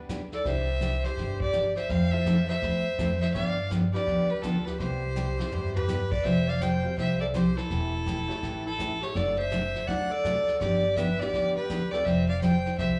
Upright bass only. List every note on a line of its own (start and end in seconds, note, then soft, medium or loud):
0.00 0.31 D2 medium
0.45 1.03 C2 medium
1.18 1.76 G1 medium
1.90 2.48 F2 medium
2.62 2.93 E2 medium
2.99 3.29 F2 medium
3.35 3.93 G2 medium
4.07 4.65 D2 medium
4.80 5.38 C2 medium
5.53 6.11 G2 medium
6.25 6.83 F1 medium
6.98 7.56 C2 medium
7.70 8.28 E1 medium
8.43 9.01 A1 medium
9.15 9.73 F#1 loud
9.88 10.46 D2 medium
10.61 11.19 G1 medium
11.33 11.91 D2 medium
12.06 12.64 F1 medium
12.79 12.99 C2 medium